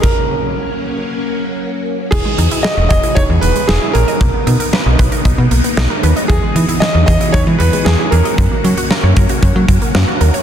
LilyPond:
<<
  \new Staff \with { instrumentName = "Grand piano" } { \time 4/4 \key e \lydian \tempo 4 = 115 ais'2.~ ais'8 r8 | gis'4 dis''8 dis''8 cis''8 b'8 gis'8 ais'8~ | ais'4. r2 r8 | gis'4 dis''8 dis''8 cis''8 b'8 gis'8 ais'8~ |
ais'4. r2 r8 | }
  \new Staff \with { instrumentName = "Synth arpeggio sound" } { \time 4/4 \key e \lydian r1 | e16 gis16 dis'16 e'16 gis'16 dis''16 gis'16 e'16 dis'16 gis16 e16 gis16 dis'16 e'16 gis'16 dis''16 | ais16 b16 dis'16 ais'16 b'16 dis''16 b'16 ais'16 dis'16 b16 ais16 b16 dis'16 ais'16 b'16 dis''16 | e16 gis16 dis'16 e'16 gis'16 dis''16 gis'16 e'16 dis'16 gis16 e16 gis16 dis'16 e'16 gis'16 dis''16 |
fis16 ais16 cis'16 fis'16 ais'16 cis''16 ais'16 fis'16 cis'16 ais16 fis16 ais16 cis'16 fis'16 ais'16 cis''16 | }
  \new Staff \with { instrumentName = "String machine" } { \time 4/4 \key e \lydian << { <fis ais cis'>1 | <e dis' fis' gis'>1 | ais1 | <e fis' gis'>1 |
<ais cis'>1 | } \\ { r1 | b1~ | b1~ | b1 |
r1 | } >> }
  \new Staff \with { instrumentName = "FM bass" } { \clef bass \time 4/4 \key e \lydian r1 | e,,16 r16 e,16 r8 e,,16 e,,16 r16 e,,16 e,16 e,,16 r16 e,,16 r16 ais,,16 r16 | b,,16 r16 b,16 r8 b,,16 b,,16 r16 b,,16 b,16 b,,16 r16 b,,16 r16 dis,16 r16 | e,16 r16 e16 r8 e,16 e,16 r16 e,16 e16 e,16 r16 e,16 r16 e,16 r16 |
fis,16 r16 fis16 r8 fis,16 fis,16 r16 fis,16 fis16 fis,16 r16 fis,16 r16 dis,16 r16 | }
  \new DrumStaff \with { instrumentName = "Drums" } \drummode { \time 4/4 <cymc bd>4 r4 r4 r4 | <cymc bd>8 hh16 hh16 sn8 <hh bd>16 hh16 <hh bd>8 hh16 hh16 sn8 hh16 hh16 | <hh bd>8 hh16 hh16 sn8 <hh bd>16 hh16 <hh bd>8 hh16 hh16 sn8 hh16 hh16 | <hh bd>8 hh16 hh16 sn8 <hh bd>16 hh16 <hh bd>8 hh16 hh16 sn8 hh16 hh16 |
<hh bd>8 hh16 hh16 sn8 <hh bd>16 hh16 <hh bd>8 <hh bd>16 hh16 sn8 hh16 hh16 | }
>>